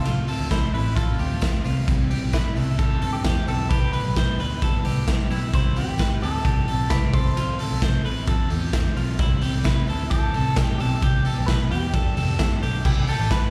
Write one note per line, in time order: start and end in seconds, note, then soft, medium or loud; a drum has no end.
0.00 0.31 C2 loud
0.00 0.51 F4 medium
0.05 0.28 C3 medium
0.05 0.28 F3 medium
0.05 0.28 A3 medium
0.05 0.27 C4 medium
0.05 0.28 F4 loud
0.05 hi-hat pedal medium
0.05 ride medium
0.05 tambourine medium
0.28 0.50 F3 soft
0.28 0.51 A3 soft
0.28 0.51 C4 medium
0.28 0.51 A4 medium
0.28 open hi-hat medium
0.28 tambourine medium
0.39 0.49 D2 medium
0.51 0.70 C2 medium
0.51 0.74 C3 medium
0.51 0.74 F3 medium
0.51 0.73 A3 medium
0.51 0.72 C4 medium
0.51 0.73 E4 medium
0.51 0.74 C5 medium
0.51 kick medium
0.51 snare medium
0.51 hi-hat pedal medium
0.51 ride medium
0.51 tambourine medium
0.73 1.12 A1 medium
0.73 0.96 F3 soft
0.73 0.97 A3 medium
0.73 0.96 C4 medium
0.73 0.95 E4 medium
0.73 0.96 B4 medium
0.73 open hi-hat medium
0.96 1.19 C3 medium
0.96 1.20 F3 medium
0.96 1.20 A3 medium
0.96 1.18 C4 medium
0.96 1.61 F4 medium
0.96 1.19 A4 medium
0.96 kick loud
0.96 hi-hat pedal medium
0.96 ride medium
0.96 tambourine soft
1.19 1.49 D2 medium
1.19 1.42 F3 soft
1.19 1.43 A3 soft
1.19 1.42 C4 medium
1.19 1.62 G4 medium
1.19 open hi-hat medium
1.19 tambourine soft
1.41 1.65 C3 medium
1.41 1.66 F3 medium
1.41 1.66 A3 medium
1.41 kick loud
1.41 snare loud
1.41 hi-hat pedal medium
1.41 ride medium
1.41 tambourine medium
1.45 1.65 C4 medium
1.64 1.85 C2 loud
1.64 1.89 A3 medium
1.64 1.88 C4 medium
1.64 1.88 F4 medium
1.64 open hi-hat medium
1.64 tambourine soft
1.68 1.89 F3 medium
1.88 2.17 C2 loud
1.88 2.11 C3 medium
1.88 2.12 G3 medium
1.88 2.12 C4 medium
1.88 2.10 E4 medium
1.88 2.11 E4 medium
1.88 kick loud
1.88 hi-hat pedal medium
1.88 ride medium
1.88 tambourine medium
2.10 2.33 G3 medium
2.10 2.35 C4 medium
2.10 2.34 E4 medium
2.10 2.33 G4 medium
2.10 open hi-hat medium
2.10 tambourine soft
2.22 2.42 B1 medium
2.33 2.57 C3 medium
2.33 2.57 G3 medium
2.33 2.56 C4 medium
2.33 2.81 E4 medium
2.33 2.55 E4 medium
2.33 2.56 B4 medium
2.33 kick loud
2.33 snare loud
2.33 hi-hat pedal medium
2.33 ride medium
2.33 tambourine medium
2.56 2.95 C2 loud
2.56 2.78 G3 soft
2.56 2.79 C4 soft
2.56 2.79 E4 medium
2.56 2.80 A4 medium
2.56 open hi-hat medium
2.56 tambourine soft
2.79 3.02 C3 medium
2.79 3.02 G3 medium
2.79 3.03 C4 medium
2.79 3.01 E4 medium
2.79 3.02 G4 medium
2.79 3.12 A4 medium
2.79 kick loud
2.79 hi-hat pedal medium
2.79 ride medium
2.79 tambourine soft
3.02 3.22 G2 medium
3.02 3.25 G3 soft
3.02 3.26 C4 medium
3.02 3.25 E4 medium
3.02 3.25 A4 medium
3.02 open hi-hat medium
3.02 tambourine soft
3.13 3.48 G4 loud
3.24 3.44 E2 loud
3.24 3.48 C3 medium
3.24 3.49 G3 medium
3.24 3.48 C4 medium
3.24 3.48 G4 medium
3.24 kick loud
3.24 snare loud
3.24 hi-hat pedal medium
3.24 ride medium
3.24 tambourine loud
3.28 3.46 E4 medium
3.47 3.67 B1 medium
3.47 3.70 G3 soft
3.47 3.71 C4 medium
3.47 3.71 E4 medium
3.47 3.69 A4 medium
3.47 3.71 A4 medium
3.47 open hi-hat medium
3.47 tambourine soft
3.69 4.00 C2 loud
3.69 3.94 C3 medium
3.69 3.94 G3 medium
3.69 3.93 B3 medium
3.69 3.92 E4 medium
3.69 3.93 G4 loud
3.69 3.91 B4 loud
3.69 kick loud
3.69 hi-hat pedal medium
3.69 ride medium
3.69 tambourine soft
3.92 4.17 B3 medium
3.92 4.16 E4 medium
3.92 5.26 B4 medium
3.92 4.16 B4 medium
3.92 open hi-hat medium
3.92 tambourine medium
3.96 4.16 G3 medium
4.05 4.15 B1 loud
4.16 4.36 B1 medium
4.16 4.39 C3 medium
4.16 4.40 G3 medium
4.16 4.39 B3 medium
4.16 4.38 E4 medium
4.16 4.40 C5 medium
4.16 kick loud
4.16 snare loud
4.16 hi-hat pedal medium
4.16 ride medium
4.16 tambourine medium
4.38 4.78 D2 medium
4.38 4.62 G3 soft
4.38 4.62 B3 medium
4.38 4.62 E4 medium
4.38 4.62 B4 medium
4.38 open hi-hat medium
4.38 tambourine soft
4.62 4.85 C3 medium
4.62 4.86 G3 medium
4.62 4.85 B3 medium
4.62 4.83 E4 loud
4.62 4.85 A4 medium
4.62 kick loud
4.62 hi-hat pedal medium
4.62 ride medium
4.85 5.05 C2 medium
4.85 5.07 G3 soft
4.85 5.08 B3 medium
4.85 5.08 E4 medium
4.85 5.28 G4 medium
4.85 open hi-hat medium
4.85 tambourine soft
5.07 5.27 B1 loud
5.07 5.31 C3 medium
5.07 5.31 G3 medium
5.07 5.31 B3 medium
5.07 5.29 E4 medium
5.07 kick loud
5.07 snare loud
5.07 hi-hat pedal medium
5.07 ride medium
5.07 tambourine loud
5.30 5.50 B1 medium
5.30 5.53 G3 medium
5.30 5.53 B3 medium
5.30 5.53 E4 medium
5.30 open hi-hat medium
5.30 tambourine medium
5.53 5.83 C2 loud
5.53 5.76 C3 medium
5.53 5.77 G3 medium
5.53 5.76 C4 medium
5.53 5.77 E4 medium
5.53 5.74 E4 medium
5.53 5.78 C5 loud
5.53 kick loud
5.53 hi-hat pedal medium
5.53 ride medium
5.53 tambourine medium
5.76 5.98 G3 soft
5.76 5.99 C4 medium
5.76 5.99 E4 medium
5.76 5.99 G4 medium
5.76 6.24 G4 medium
5.76 open hi-hat medium
5.76 tambourine medium
5.88 5.98 A1 medium
5.98 6.19 G1 medium
5.98 6.22 C3 medium
5.98 6.22 G3 medium
5.98 6.21 C4 medium
5.98 6.21 E4 medium
5.98 6.22 B4 medium
5.98 kick loud
5.98 snare medium
5.98 hi-hat pedal medium
5.98 ride medium
5.98 tambourine medium
6.21 6.42 D2 medium
6.21 6.44 G3 medium
6.21 6.45 C4 soft
6.21 6.45 E4 soft
6.21 6.90 A4 medium
6.21 6.46 A4 medium
6.21 open hi-hat medium
6.21 tambourine soft
6.45 6.65 C2 medium
6.45 6.68 C3 medium
6.45 6.68 G3 medium
6.45 6.67 C4 medium
6.45 6.66 E4 medium
6.45 6.68 G4 medium
6.45 kick loud
6.45 hi-hat pedal medium
6.45 ride medium
6.67 6.88 B1 medium
6.67 6.89 G3 soft
6.67 6.90 C4 soft
6.67 6.91 E4 medium
6.67 6.91 A4 medium
6.67 open hi-hat medium
6.67 tambourine soft
6.90 7.10 C2 loud
6.90 7.13 C3 medium
6.90 7.14 G3 medium
6.90 7.14 E4 medium
6.90 7.14 G4 medium
6.90 7.14 B4 loud
6.90 kick loud
6.90 snare loud
6.90 hi-hat pedal medium
6.90 ride medium
6.90 tambourine loud
7.13 7.62 C2 loud
7.13 7.35 C4 soft
7.13 7.35 F4 soft
7.13 7.36 A4 medium
7.13 7.37 A4 medium
7.13 7.57 C5 medium
7.13 kick loud
7.13 open hi-hat medium
7.13 tambourine medium
7.35 7.59 C3 medium
7.35 7.59 F3 medium
7.35 7.59 C4 medium
7.35 7.59 F4 medium
7.35 7.60 F4 loud
7.35 7.57 A4 medium
7.35 hi-hat pedal medium
7.35 ride medium
7.35 tambourine medium
7.59 7.81 C4 soft
7.59 7.82 F4 medium
7.59 7.82 A4 medium
7.59 7.83 A4 medium
7.59 open hi-hat medium
7.59 tambourine medium
7.71 7.81 B1 medium
7.81 8.06 C2 medium
7.81 8.05 F3 medium
7.81 8.05 C4 medium
7.81 8.04 F4 medium
7.81 8.02 A4 medium
7.81 8.05 C5 medium
7.81 kick loud
7.81 snare loud
7.81 hi-hat pedal medium
7.81 ride medium
7.81 tambourine medium
8.04 8.44 A1 medium
8.04 8.26 C4 medium
8.04 8.27 F4 medium
8.04 8.27 A4 medium
8.04 8.28 B4 medium
8.04 open hi-hat medium
8.04 tambourine soft
8.27 8.50 C3 loud
8.27 8.51 F3 medium
8.27 8.50 C4 loud
8.27 8.50 F4 medium
8.27 8.50 A4 medium
8.27 8.48 A4 loud
8.27 kick loud
8.27 hi-hat pedal medium
8.27 ride medium
8.49 8.71 E2 medium
8.49 8.72 C4 soft
8.49 8.73 F4 medium
8.49 8.94 G4 medium
8.49 8.73 A4 medium
8.49 open hi-hat medium
8.49 tambourine soft
8.72 8.93 D2 loud
8.72 8.96 F3 medium
8.72 8.96 C4 medium
8.72 8.95 F4 medium
8.72 8.94 A4 medium
8.72 kick loud
8.72 snare loud
8.72 hi-hat pedal medium
8.72 ride medium
8.72 tambourine loud
8.95 9.16 B1 medium
8.95 9.18 C4 medium
8.95 9.20 F4 medium
8.95 9.19 A4 medium
8.95 open hi-hat medium
8.95 tambourine soft
9.18 9.49 C2 loud
9.18 9.42 C3 medium
9.18 9.42 G3 medium
9.18 9.42 C4 loud
9.18 9.42 E4 medium
9.18 9.40 E4 loud
9.18 kick loud
9.18 hi-hat pedal medium
9.18 ride medium
9.18 tambourine medium
9.41 9.63 G3 medium
9.41 9.65 C4 medium
9.41 9.65 E4 medium
9.41 9.65 G4 medium
9.41 open hi-hat medium
9.41 tambourine medium
9.54 9.64 C2 medium
9.64 9.88 C3 medium
9.64 9.85 C3 loud
9.64 9.88 G3 medium
9.64 9.87 C4 medium
9.64 10.12 E4 medium
9.64 9.86 E4 medium
9.64 9.89 B4 medium
9.64 kick loud
9.64 snare loud
9.64 hi-hat pedal medium
9.64 ride medium
9.64 tambourine medium
9.87 10.27 D2 medium
9.87 10.10 G3 soft
9.87 10.11 C4 medium
9.87 10.11 E4 medium
9.87 10.12 A4 medium
9.87 open hi-hat medium
9.87 tambourine soft
10.10 10.34 C3 medium
10.10 10.34 G3 medium
10.10 10.34 C4 medium
10.10 10.32 E4 medium
10.10 10.34 G4 medium
10.10 10.63 A4 loud
10.10 kick loud
10.10 hi-hat pedal medium
10.10 ride medium
10.10 tambourine soft
10.33 10.54 C2 medium
10.33 10.56 G3 soft
10.33 10.56 C4 soft
10.33 10.56 E4 medium
10.33 10.57 A4 medium
10.33 open hi-hat medium
10.33 tambourine soft
10.56 10.76 B1 medium
10.56 10.79 C3 medium
10.56 10.80 G3 medium
10.56 10.79 C4 medium
10.56 10.78 E4 medium
10.56 10.80 G4 medium
10.56 kick loud
10.56 snare loud
10.56 hi-hat pedal medium
10.56 ride medium
10.56 tambourine loud
10.63 10.78 G4 loud
10.78 11.00 B1 loud
10.78 11.02 G3 soft
10.78 11.03 C4 medium
10.78 11.02 E4 medium
10.78 11.50 G4 loud
10.78 11.03 A4 medium
10.78 open hi-hat medium
10.78 tambourine medium
11.02 11.32 C2 loud
11.02 11.25 C3 medium
11.02 11.26 G3 medium
11.02 11.26 B3 medium
11.02 11.25 E4 medium
11.02 11.26 G4 loud
11.02 kick loud
11.02 hi-hat pedal medium
11.02 ride medium
11.02 tambourine medium
11.25 11.48 G3 medium
11.25 11.48 B3 medium
11.25 11.48 E4 medium
11.25 11.48 A4 medium
11.25 open hi-hat medium
11.25 tambourine medium
11.37 11.47 B1 medium
11.47 11.68 B1 loud
11.47 11.71 C3 medium
11.47 11.71 G3 medium
11.47 11.71 B3 medium
11.47 11.71 B4 loud
11.47 11.71 B4 medium
11.47 kick loud
11.47 snare loud
11.47 hi-hat pedal medium
11.47 ride medium
11.47 tambourine medium
11.51 11.69 E4 medium
11.70 11.91 E2 loud
11.70 11.92 G3 soft
11.70 11.92 B3 medium
11.70 11.94 E4 medium
11.70 12.58 G4 loud
11.70 11.94 G4 medium
11.70 open hi-hat medium
11.93 12.13 G1 loud
11.93 12.16 G3 medium
11.93 12.17 B3 medium
11.93 12.16 D4 medium
11.93 12.16 A4 medium
11.93 12.15 A4 loud
11.93 kick loud
11.93 hi-hat pedal medium
11.93 ride medium
12.16 12.36 F1 medium
12.16 12.39 B3 medium
12.16 12.40 D4 soft
12.16 12.39 A4 medium
12.16 12.60 A4 medium
12.16 open hi-hat medium
12.16 tambourine soft
12.39 12.59 G1 medium
12.39 12.62 G3 medium
12.39 12.63 B3 medium
12.39 12.62 D4 medium
12.39 12.61 A4 medium
12.39 kick loud
12.39 snare loud
12.39 hi-hat pedal medium
12.39 ride medium
12.39 tambourine medium
12.62 12.82 B1 medium
12.62 12.86 B3 medium
12.62 12.86 D4 medium
12.62 12.85 G4 medium
12.62 12.85 A4 medium
12.62 open hi-hat medium
12.62 tambourine medium
12.85 13.14 C2 loud
12.85 13.08 E4 medium
12.85 12.92 G4 loud
12.85 kick loud
12.85 crash loud
12.85 tambourine medium
13.07 13.31 G4 medium
13.07 13.30 A4 loud
13.07 open hi-hat medium
13.07 tambourine medium
13.20 13.29 A1 medium
13.31 13.50 G1 loud
13.31 13.50 B4 loud
13.31 13.50 B4 medium
13.31 kick loud
13.31 snare loud
13.31 hi-hat pedal medium
13.31 ride medium
13.31 tambourine medium